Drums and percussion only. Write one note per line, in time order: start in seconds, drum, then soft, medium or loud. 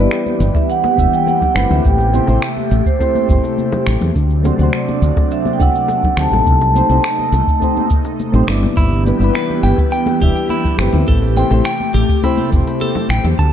0.11 finger snap medium
0.11 high bongo medium
0.11 cabasa soft
0.26 high conga medium
0.26 cabasa soft
0.41 cabasa medium
0.55 kick medium
0.55 high bongo soft
0.55 cabasa soft
0.70 cabasa soft
0.84 high bongo medium
0.84 high conga medium
0.84 cabasa soft
0.98 kick loud
0.98 cabasa medium
1.14 cabasa soft
1.27 high bongo medium
1.27 high conga medium
1.27 cabasa soft
1.41 kick medium
1.41 low conga medium
1.41 cabasa soft
1.56 finger snap medium
1.56 high bongo medium
1.56 low conga medium
1.56 cabasa medium
1.70 high conga medium
1.70 low conga loud
1.70 cabasa soft
1.85 kick loud
1.85 cabasa soft
1.98 high bongo soft
1.98 cabasa soft
2.14 high conga medium
2.14 cabasa medium
2.27 high bongo medium
2.27 cabasa soft
2.42 finger snap medium
2.42 cabasa soft
2.57 high conga medium
2.57 cabasa soft
2.71 high bongo soft
2.71 cabasa medium
2.86 kick loud
2.86 cabasa soft
3.00 kick medium
3.00 high bongo medium
3.00 cabasa soft
3.15 high conga medium
3.15 cabasa soft
3.29 kick loud
3.29 cabasa medium
3.44 high bongo soft
3.44 cabasa soft
3.58 high conga medium
3.58 cabasa soft
3.72 high bongo medium
3.72 low conga medium
3.72 cabasa soft
3.87 finger snap medium
3.87 low conga medium
3.87 cabasa medium
4.01 high conga medium
4.01 low conga medium
4.01 cabasa soft
4.16 kick loud
4.16 high bongo soft
4.16 cabasa soft
4.30 cabasa soft
4.45 high bongo medium
4.45 high conga medium
4.45 cabasa medium
4.59 cabasa soft
4.73 finger snap medium
4.73 cabasa soft
4.88 high bongo soft
4.88 high conga medium
4.88 cabasa soft
5.03 cabasa medium
5.17 kick loud
5.17 high bongo medium
5.17 cabasa soft
5.31 cabasa soft
5.45 high conga loud
5.45 cabasa soft
5.60 kick loud
5.60 high bongo medium
5.60 cabasa medium
5.75 cabasa soft
5.88 high bongo medium
5.88 high conga medium
5.88 cabasa soft
6.03 kick medium
6.03 low conga medium
6.03 cabasa soft
6.17 finger snap medium
6.17 low conga medium
6.17 cabasa medium
6.32 high bongo soft
6.32 high conga loud
6.32 low conga medium
6.32 cabasa soft
6.46 kick loud
6.46 cabasa soft
6.61 high bongo medium
6.61 cabasa soft
6.76 high conga medium
6.76 cabasa medium
6.90 cabasa soft
7.04 finger snap medium
7.04 high bongo soft
7.04 cabasa soft
7.19 high conga medium
7.19 cabasa soft
7.33 high bongo medium
7.33 cabasa medium
7.47 kick medium
7.47 cabasa soft
7.62 kick medium
7.62 cabasa soft
7.76 high bongo soft
7.76 high conga medium
7.76 cabasa soft
7.90 kick loud
7.90 cabasa medium
8.05 high bongo medium
8.05 cabasa soft
8.19 high conga medium
8.19 cabasa soft
8.34 low conga medium
8.34 cabasa soft
8.47 finger snap medium
8.47 high bongo soft
8.47 low conga medium
8.47 cabasa medium
8.63 high conga loud
8.63 low conga medium
8.63 cabasa soft
8.77 kick loud
8.77 cabasa soft
8.92 cabasa soft
9.06 high bongo soft
9.06 high conga medium
9.06 cabasa medium
9.21 cabasa soft
9.35 finger snap medium
9.35 high bongo medium
9.35 cabasa soft
9.50 high conga medium
9.50 cabasa soft
9.64 cabasa medium
9.78 kick loud
9.78 high bongo soft
9.78 cabasa soft
9.93 cabasa soft
10.06 high bongo medium
10.06 high conga loud
10.06 cabasa soft
10.21 kick loud
10.21 cabasa medium
10.37 cabasa soft
10.49 high bongo soft
10.49 high conga medium
10.49 cabasa soft
10.64 kick medium
10.64 low conga medium
10.64 cabasa soft
10.79 finger snap medium
10.79 high bongo medium
10.79 low conga medium
10.79 cabasa medium
10.93 high conga medium
10.93 low conga medium
10.93 cabasa soft
11.08 kick loud
11.08 cabasa soft
11.22 high bongo soft
11.22 cabasa soft
11.36 high conga medium
11.36 cabasa medium
11.51 high bongo medium
11.51 cabasa soft
11.65 finger snap medium
11.65 cabasa soft
11.80 high conga medium
11.80 cabasa soft
11.94 high bongo soft
11.94 cabasa medium
12.09 kick medium
12.09 cabasa soft
12.23 kick medium
12.23 high bongo medium
12.23 cabasa soft
12.38 high conga medium
12.38 cabasa soft
12.52 kick loud
12.52 cabasa medium
12.67 high bongo soft
12.67 cabasa soft
12.81 high conga medium
12.81 cabasa soft
12.95 high bongo medium
12.95 low conga medium
12.95 cabasa soft
13.10 finger snap medium
13.10 low conga medium
13.10 cabasa medium
13.25 high conga medium
13.25 low conga medium
13.25 cabasa soft
13.39 kick loud
13.39 high bongo soft
13.39 cabasa soft